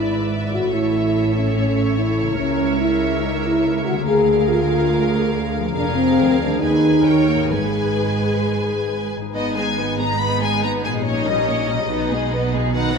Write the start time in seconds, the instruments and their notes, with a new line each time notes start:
Already playing: double bass section G#1, harp G#2 B3 D4 E4 B4, cello section G#2, french horn section E4, viola section B4, violin section D5 E5
0.53 harp A2, french horn section F#4
0.59 harp C#4
0.64 harp E4
0.68 harp A4, viola section A4
0.72 double bass section A1, cello section A2, french horn section E4, violin section C#5
1.35 french horn section C#4
1.56 french horn section C#4
1.98 french horn section E4
2.21 harp C#3
2.25 harp A#3
2.30 harp E4
2.35 harp A#4, viola section A#4
2.39 double bass section C#2, cello section C#2, french horn section C#4, violin section E5
2.80 french horn section E4
3.22 french horn section D#4
3.45 french horn section E4
3.84 french horn section F#4
3.88 harp D3
3.93 harp A#3
3.97 harp G#4
4.02 harp A#4
4.06 double bass section D2, cello section D2, french horn section G#4, viola section G#4, violin section A#4 F5
4.48 french horn section F4
5.59 harp F3
5.63 harp A#3
5.68 harp G#4
5.72 french horn section D4, viola section G#4, harp A#4, violin section F5
5.76 double bass section F1, cello section F2, violin section A#4
5.95 french horn section C4
6.20 cello section D2, double bass section D2
6.40 french horn section D4
6.44 harp D#3
6.49 harp D#4
6.53 harp G#4
6.58 french horn section D#4, viola section G#4, harp B4, violin section G#5
6.62 cello section D#2, double bass section D#2, violin section B4
6.89 harp D#3
6.93 harp D#4
6.97 harp G4
7.02 viola section A#4, harp C#5
7.06 double bass section D#2, cello section D#2, violin section C#5 G5
7.28 french horn section A#3
7.35 harp G#2
7.39 harp D#4
7.43 harp G#4
7.48 viola section G#4, harp B4
7.52 double bass section G#1, cello section G#2, french horn section G#3, violin section B4 G#5
9.17 harp G#2
9.21 harp D#4
9.26 harp G#4
9.30 violin section B3 B4, harp B4
9.34 double bass section G#1, cello section G#2, viola section B3 D#4, violin section D#5
9.55 viola section G#3 B3, violin section D#4 G#4 G#5
9.78 violin section B3 B4, viola section B3 D#4
9.98 viola section G#3 B3, violin section D#4 G#4 A#5
10.19 violin section B3 B4 B5, viola section B3 D#4
10.40 viola section G#3 B3, violin section D#4 G#4 G#5
10.60 violin section B3 B4 A#5, viola section B3 D#4
10.83 viola section G#3 B3, violin section D#4 G#4 G#5
10.88 harp A#2
10.92 harp D#4
10.97 harp G4
11.02 viola section A#3, violin section C#4 C#5 D#5, harp C#5
11.06 double bass section A#1, cello section A#2, viola section D#4
11.26 viola section G3 C#4, violin section D#4 D#5
11.47 viola section A#3 D#4, violin section C#4 C#5
11.69 viola section G3 C#4, violin section D#4 D#5
11.73 harp B2
11.77 harp D#4
11.82 harp G#4
11.86 cello section B2, harp B4
11.90 double bass section B1, viola section B3 D#4, violin section B3 B4
12.10 viola section G#3 B3, violin section D#4 G#4
12.32 viola section B3 D#4, violin section B3 B4
12.53 viola section G#3 B3, violin section D#4 G#4
12.57 harp B2
12.62 harp D#4
12.66 harp F#4
12.70 viola section D#3 D#4, harp B4, violin section B4
12.74 violin section D#4 F#5
12.95 viola section F#3 B3, violin section D#5